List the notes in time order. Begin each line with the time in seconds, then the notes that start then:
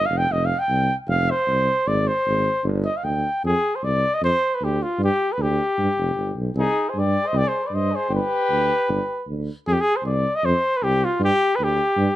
0.06 F5
0.10 F1
0.18 G5
0.30 F1 D#5
0.45 F5
0.59 G5
0.69 C2
1.08 F1 F5
1.30 C5
1.47 C2
1.86 G#1 D5
2.07 C5
2.26 G#1
2.64 G1
2.84 D#5
2.97 F5
3.04 D2 G5
3.44 F2 G#4
3.75 C5
3.83 C2 D5
4.14 D#5
4.22 F2 C5
4.55 B4
4.61 D2 G4
4.83 F4
4.99 G2
5.04 G4
5.32 B4
5.38 D2
5.42 G4
5.78 G2
5.97 F1
6.15 G1
6.35 B1
6.55 C2 G#4
6.59 D#4
6.89 G#4 C5
6.95 G2 D5
7.00 G4
7.26 C5 D#5
7.33 C2 G4
7.38 D5
7.44 G#4
7.48 C5
7.63 B4 D5
7.72 G2 C5 D#5
7.92 G#4 C5
8.09 G1 G4
8.15 B4
8.50 D2
8.89 G1
9.27 D2
9.67 F2 G#4
9.73 G4
9.81 G#4
9.96 C5
10.04 C2 D5
10.35 D#5
10.44 F2 C5
10.77 B4
10.82 C2 G4
11.04 F4
11.20 G2
11.24 G4
11.55 B4
11.60 D2
11.64 G4
11.97 G2